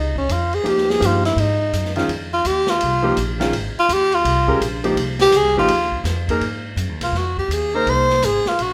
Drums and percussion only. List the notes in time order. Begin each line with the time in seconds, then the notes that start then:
0.16 kick
0.29 hi-hat pedal, ride
0.53 ride
0.66 ride
0.78 snare
0.90 snare
1.02 hi-hat pedal, ride
1.25 snare, ride
1.38 ride
1.73 hi-hat pedal, ride
1.85 snare
1.96 snare, ride
2.09 ride
2.45 hi-hat pedal, ride
2.67 snare
2.81 ride
3.17 hi-hat pedal, ride
3.41 snare, ride
3.53 ride
3.89 hi-hat pedal, ride
4.12 ride
4.25 ride
4.48 kick
4.62 hi-hat pedal, ride
4.84 ride
4.97 ride
5.19 snare, ride
5.32 hi-hat pedal, ride
5.68 ride
5.92 kick
6.05 snare, hi-hat pedal, ride
6.28 kick, ride
6.41 ride
6.77 hi-hat pedal, ride
7.01 snare, ride
7.14 snare
7.37 kick
7.51 hi-hat pedal, ride
7.87 ride
8.10 snare
8.22 hi-hat pedal, ride
8.46 snare
8.59 ride